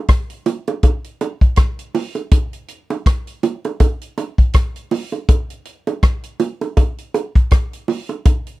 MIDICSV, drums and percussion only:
0, 0, Header, 1, 2, 480
1, 0, Start_track
1, 0, Tempo, 742666
1, 1498, Time_signature, 4, 2, 24, 8
1, 5558, End_track
2, 0, Start_track
2, 0, Title_t, "Drums"
2, 54, Note_on_c, 9, 42, 85
2, 56, Note_on_c, 9, 36, 106
2, 58, Note_on_c, 9, 37, 109
2, 119, Note_off_c, 9, 42, 0
2, 121, Note_off_c, 9, 36, 0
2, 123, Note_off_c, 9, 37, 0
2, 192, Note_on_c, 9, 42, 53
2, 257, Note_off_c, 9, 42, 0
2, 298, Note_on_c, 9, 42, 73
2, 298, Note_on_c, 9, 61, 82
2, 362, Note_off_c, 9, 61, 0
2, 363, Note_off_c, 9, 42, 0
2, 435, Note_on_c, 9, 42, 35
2, 439, Note_on_c, 9, 60, 68
2, 499, Note_off_c, 9, 42, 0
2, 503, Note_off_c, 9, 60, 0
2, 535, Note_on_c, 9, 42, 79
2, 538, Note_on_c, 9, 36, 99
2, 540, Note_on_c, 9, 60, 81
2, 600, Note_off_c, 9, 42, 0
2, 602, Note_off_c, 9, 36, 0
2, 605, Note_off_c, 9, 60, 0
2, 674, Note_on_c, 9, 42, 55
2, 739, Note_off_c, 9, 42, 0
2, 780, Note_on_c, 9, 42, 73
2, 783, Note_on_c, 9, 60, 78
2, 845, Note_off_c, 9, 42, 0
2, 847, Note_off_c, 9, 60, 0
2, 913, Note_on_c, 9, 36, 87
2, 918, Note_on_c, 9, 42, 36
2, 978, Note_off_c, 9, 36, 0
2, 983, Note_off_c, 9, 42, 0
2, 1009, Note_on_c, 9, 42, 97
2, 1016, Note_on_c, 9, 37, 101
2, 1018, Note_on_c, 9, 36, 115
2, 1073, Note_off_c, 9, 42, 0
2, 1081, Note_off_c, 9, 37, 0
2, 1083, Note_off_c, 9, 36, 0
2, 1155, Note_on_c, 9, 42, 56
2, 1220, Note_off_c, 9, 42, 0
2, 1258, Note_on_c, 9, 61, 75
2, 1260, Note_on_c, 9, 46, 72
2, 1322, Note_off_c, 9, 61, 0
2, 1324, Note_off_c, 9, 46, 0
2, 1390, Note_on_c, 9, 60, 53
2, 1393, Note_on_c, 9, 42, 36
2, 1455, Note_off_c, 9, 60, 0
2, 1457, Note_off_c, 9, 42, 0
2, 1495, Note_on_c, 9, 42, 95
2, 1497, Note_on_c, 9, 36, 123
2, 1497, Note_on_c, 9, 60, 65
2, 1560, Note_off_c, 9, 42, 0
2, 1562, Note_off_c, 9, 36, 0
2, 1562, Note_off_c, 9, 60, 0
2, 1635, Note_on_c, 9, 42, 51
2, 1699, Note_off_c, 9, 42, 0
2, 1734, Note_on_c, 9, 42, 76
2, 1799, Note_off_c, 9, 42, 0
2, 1877, Note_on_c, 9, 60, 76
2, 1878, Note_on_c, 9, 42, 36
2, 1941, Note_off_c, 9, 60, 0
2, 1942, Note_off_c, 9, 42, 0
2, 1978, Note_on_c, 9, 36, 105
2, 1979, Note_on_c, 9, 42, 88
2, 1983, Note_on_c, 9, 37, 117
2, 2043, Note_off_c, 9, 36, 0
2, 2043, Note_off_c, 9, 42, 0
2, 2047, Note_off_c, 9, 37, 0
2, 2114, Note_on_c, 9, 42, 54
2, 2178, Note_off_c, 9, 42, 0
2, 2218, Note_on_c, 9, 61, 82
2, 2219, Note_on_c, 9, 42, 73
2, 2283, Note_off_c, 9, 61, 0
2, 2284, Note_off_c, 9, 42, 0
2, 2355, Note_on_c, 9, 42, 33
2, 2359, Note_on_c, 9, 60, 69
2, 2419, Note_off_c, 9, 42, 0
2, 2424, Note_off_c, 9, 60, 0
2, 2455, Note_on_c, 9, 42, 77
2, 2457, Note_on_c, 9, 36, 97
2, 2458, Note_on_c, 9, 60, 86
2, 2519, Note_off_c, 9, 42, 0
2, 2522, Note_off_c, 9, 36, 0
2, 2522, Note_off_c, 9, 60, 0
2, 2595, Note_on_c, 9, 42, 55
2, 2659, Note_off_c, 9, 42, 0
2, 2699, Note_on_c, 9, 60, 74
2, 2700, Note_on_c, 9, 42, 70
2, 2764, Note_off_c, 9, 60, 0
2, 2765, Note_off_c, 9, 42, 0
2, 2833, Note_on_c, 9, 36, 89
2, 2836, Note_on_c, 9, 42, 37
2, 2897, Note_off_c, 9, 36, 0
2, 2900, Note_off_c, 9, 42, 0
2, 2931, Note_on_c, 9, 42, 101
2, 2937, Note_on_c, 9, 36, 116
2, 2938, Note_on_c, 9, 37, 110
2, 2995, Note_off_c, 9, 42, 0
2, 3002, Note_off_c, 9, 36, 0
2, 3003, Note_off_c, 9, 37, 0
2, 3074, Note_on_c, 9, 42, 54
2, 3139, Note_off_c, 9, 42, 0
2, 3175, Note_on_c, 9, 61, 79
2, 3178, Note_on_c, 9, 46, 82
2, 3240, Note_off_c, 9, 61, 0
2, 3243, Note_off_c, 9, 46, 0
2, 3311, Note_on_c, 9, 60, 54
2, 3314, Note_on_c, 9, 42, 35
2, 3376, Note_off_c, 9, 60, 0
2, 3379, Note_off_c, 9, 42, 0
2, 3416, Note_on_c, 9, 42, 99
2, 3417, Note_on_c, 9, 36, 123
2, 3417, Note_on_c, 9, 60, 64
2, 3481, Note_off_c, 9, 42, 0
2, 3482, Note_off_c, 9, 36, 0
2, 3482, Note_off_c, 9, 60, 0
2, 3555, Note_on_c, 9, 42, 52
2, 3619, Note_off_c, 9, 42, 0
2, 3654, Note_on_c, 9, 42, 70
2, 3718, Note_off_c, 9, 42, 0
2, 3795, Note_on_c, 9, 60, 81
2, 3796, Note_on_c, 9, 42, 36
2, 3860, Note_off_c, 9, 42, 0
2, 3860, Note_off_c, 9, 60, 0
2, 3895, Note_on_c, 9, 42, 89
2, 3896, Note_on_c, 9, 36, 110
2, 3899, Note_on_c, 9, 37, 107
2, 3959, Note_off_c, 9, 42, 0
2, 3961, Note_off_c, 9, 36, 0
2, 3963, Note_off_c, 9, 37, 0
2, 4029, Note_on_c, 9, 42, 54
2, 4094, Note_off_c, 9, 42, 0
2, 4135, Note_on_c, 9, 61, 83
2, 4137, Note_on_c, 9, 42, 76
2, 4199, Note_off_c, 9, 61, 0
2, 4201, Note_off_c, 9, 42, 0
2, 4273, Note_on_c, 9, 42, 35
2, 4274, Note_on_c, 9, 60, 69
2, 4338, Note_off_c, 9, 42, 0
2, 4339, Note_off_c, 9, 60, 0
2, 4374, Note_on_c, 9, 42, 77
2, 4375, Note_on_c, 9, 60, 76
2, 4377, Note_on_c, 9, 36, 105
2, 4439, Note_off_c, 9, 42, 0
2, 4440, Note_off_c, 9, 60, 0
2, 4442, Note_off_c, 9, 36, 0
2, 4514, Note_on_c, 9, 42, 55
2, 4578, Note_off_c, 9, 42, 0
2, 4617, Note_on_c, 9, 60, 73
2, 4622, Note_on_c, 9, 42, 66
2, 4682, Note_off_c, 9, 60, 0
2, 4686, Note_off_c, 9, 42, 0
2, 4753, Note_on_c, 9, 36, 91
2, 4757, Note_on_c, 9, 42, 37
2, 4818, Note_off_c, 9, 36, 0
2, 4822, Note_off_c, 9, 42, 0
2, 4852, Note_on_c, 9, 42, 96
2, 4858, Note_on_c, 9, 36, 113
2, 4859, Note_on_c, 9, 37, 107
2, 4916, Note_off_c, 9, 42, 0
2, 4923, Note_off_c, 9, 36, 0
2, 4924, Note_off_c, 9, 37, 0
2, 4997, Note_on_c, 9, 42, 56
2, 5061, Note_off_c, 9, 42, 0
2, 5094, Note_on_c, 9, 61, 72
2, 5101, Note_on_c, 9, 46, 73
2, 5158, Note_off_c, 9, 61, 0
2, 5165, Note_off_c, 9, 46, 0
2, 5230, Note_on_c, 9, 60, 57
2, 5234, Note_on_c, 9, 42, 34
2, 5295, Note_off_c, 9, 60, 0
2, 5298, Note_off_c, 9, 42, 0
2, 5335, Note_on_c, 9, 42, 98
2, 5335, Note_on_c, 9, 60, 66
2, 5336, Note_on_c, 9, 36, 120
2, 5399, Note_off_c, 9, 42, 0
2, 5400, Note_off_c, 9, 60, 0
2, 5401, Note_off_c, 9, 36, 0
2, 5472, Note_on_c, 9, 42, 53
2, 5536, Note_off_c, 9, 42, 0
2, 5558, End_track
0, 0, End_of_file